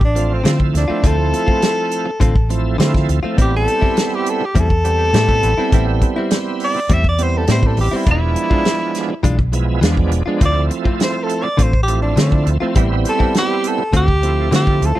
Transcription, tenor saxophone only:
0, 0, Header, 1, 2, 480
1, 0, Start_track
1, 0, Key_signature, 0, "minor"
1, 0, Tempo, 586510
1, 849, Time_signature, 4, 2, 24, 8
1, 12272, End_track
2, 0, Start_track
2, 0, Title_t, "Tenor saxophone"
2, 0, Program_c, 0, 66
2, 37, Note_on_c, 0, 62, 83
2, 273, Note_on_c, 0, 60, 74
2, 285, Note_off_c, 0, 62, 0
2, 495, Note_off_c, 0, 60, 0
2, 629, Note_on_c, 0, 62, 74
2, 872, Note_on_c, 0, 69, 95
2, 884, Note_off_c, 0, 62, 0
2, 2266, Note_off_c, 0, 69, 0
2, 2794, Note_on_c, 0, 67, 85
2, 2894, Note_off_c, 0, 67, 0
2, 2915, Note_on_c, 0, 69, 99
2, 3393, Note_on_c, 0, 67, 82
2, 3406, Note_off_c, 0, 69, 0
2, 3514, Note_on_c, 0, 69, 77
2, 3526, Note_off_c, 0, 67, 0
2, 3640, Note_on_c, 0, 67, 80
2, 3652, Note_off_c, 0, 69, 0
2, 3760, Note_on_c, 0, 69, 110
2, 3772, Note_off_c, 0, 67, 0
2, 5149, Note_off_c, 0, 69, 0
2, 5434, Note_on_c, 0, 74, 93
2, 5674, Note_on_c, 0, 76, 85
2, 5686, Note_off_c, 0, 74, 0
2, 5772, Note_off_c, 0, 76, 0
2, 5800, Note_on_c, 0, 74, 83
2, 5917, Note_on_c, 0, 72, 77
2, 5929, Note_off_c, 0, 74, 0
2, 6034, Note_on_c, 0, 69, 79
2, 6046, Note_off_c, 0, 72, 0
2, 6131, Note_off_c, 0, 69, 0
2, 6152, Note_on_c, 0, 72, 75
2, 6274, Note_on_c, 0, 69, 69
2, 6287, Note_off_c, 0, 72, 0
2, 6371, Note_off_c, 0, 69, 0
2, 6389, Note_on_c, 0, 67, 82
2, 6516, Note_on_c, 0, 64, 69
2, 6528, Note_off_c, 0, 67, 0
2, 6612, Note_off_c, 0, 64, 0
2, 6635, Note_on_c, 0, 64, 96
2, 7550, Note_off_c, 0, 64, 0
2, 8553, Note_on_c, 0, 74, 92
2, 8693, Note_off_c, 0, 74, 0
2, 9033, Note_on_c, 0, 72, 75
2, 9195, Note_on_c, 0, 69, 77
2, 9207, Note_off_c, 0, 72, 0
2, 9355, Note_on_c, 0, 74, 77
2, 9367, Note_off_c, 0, 69, 0
2, 9517, Note_on_c, 0, 72, 77
2, 9529, Note_off_c, 0, 74, 0
2, 9655, Note_off_c, 0, 72, 0
2, 9681, Note_on_c, 0, 67, 88
2, 9817, Note_off_c, 0, 67, 0
2, 9837, Note_on_c, 0, 62, 75
2, 9975, Note_off_c, 0, 62, 0
2, 9997, Note_on_c, 0, 62, 84
2, 10213, Note_off_c, 0, 62, 0
2, 10710, Note_on_c, 0, 69, 82
2, 10930, Note_off_c, 0, 69, 0
2, 10951, Note_on_c, 0, 67, 89
2, 11194, Note_on_c, 0, 69, 75
2, 11206, Note_off_c, 0, 67, 0
2, 11412, Note_off_c, 0, 69, 0
2, 11428, Note_on_c, 0, 67, 91
2, 11882, Note_off_c, 0, 67, 0
2, 11912, Note_on_c, 0, 67, 92
2, 12158, Note_on_c, 0, 69, 81
2, 12170, Note_off_c, 0, 67, 0
2, 12272, Note_off_c, 0, 69, 0
2, 12272, End_track
0, 0, End_of_file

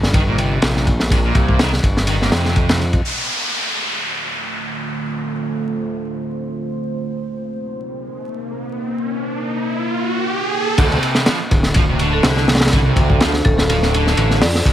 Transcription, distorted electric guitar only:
0, 0, Header, 1, 2, 480
1, 0, Start_track
1, 0, Tempo, 483871
1, 1101, Time_signature, 4, 2, 24, 8
1, 14610, End_track
2, 0, Start_track
2, 0, Title_t, "Distorted electric guitar"
2, 0, Program_c, 0, 30
2, 144, Note_on_c, 0, 51, 82
2, 208, Note_off_c, 0, 51, 0
2, 276, Note_on_c, 0, 46, 73
2, 372, Note_off_c, 0, 46, 0
2, 383, Note_on_c, 0, 48, 84
2, 851, Note_off_c, 0, 48, 0
2, 1103, Note_on_c, 0, 48, 105
2, 1167, Note_off_c, 0, 48, 0
2, 1234, Note_on_c, 0, 46, 77
2, 1571, Note_off_c, 0, 46, 0
2, 1582, Note_on_c, 0, 51, 85
2, 1690, Note_off_c, 0, 51, 0
2, 2061, Note_on_c, 0, 51, 79
2, 2127, Note_off_c, 0, 51, 0
2, 2195, Note_on_c, 0, 46, 76
2, 2292, Note_off_c, 0, 46, 0
2, 2302, Note_on_c, 0, 48, 81
2, 2771, Note_off_c, 0, 48, 0
2, 10701, Note_on_c, 0, 50, 103
2, 10766, Note_off_c, 0, 50, 0
2, 10832, Note_on_c, 0, 48, 75
2, 11170, Note_off_c, 0, 48, 0
2, 11182, Note_on_c, 0, 53, 85
2, 11290, Note_off_c, 0, 53, 0
2, 11660, Note_on_c, 0, 53, 85
2, 11726, Note_off_c, 0, 53, 0
2, 11792, Note_on_c, 0, 48, 75
2, 11890, Note_off_c, 0, 48, 0
2, 11899, Note_on_c, 0, 50, 80
2, 12369, Note_off_c, 0, 50, 0
2, 12619, Note_on_c, 0, 50, 106
2, 12685, Note_off_c, 0, 50, 0
2, 12751, Note_on_c, 0, 48, 76
2, 13089, Note_off_c, 0, 48, 0
2, 13101, Note_on_c, 0, 53, 89
2, 13210, Note_off_c, 0, 53, 0
2, 13583, Note_on_c, 0, 53, 83
2, 13647, Note_off_c, 0, 53, 0
2, 13712, Note_on_c, 0, 48, 78
2, 13810, Note_off_c, 0, 48, 0
2, 13822, Note_on_c, 0, 50, 85
2, 14290, Note_off_c, 0, 50, 0
2, 14541, Note_on_c, 0, 48, 100
2, 14606, Note_off_c, 0, 48, 0
2, 14610, End_track
0, 0, End_of_file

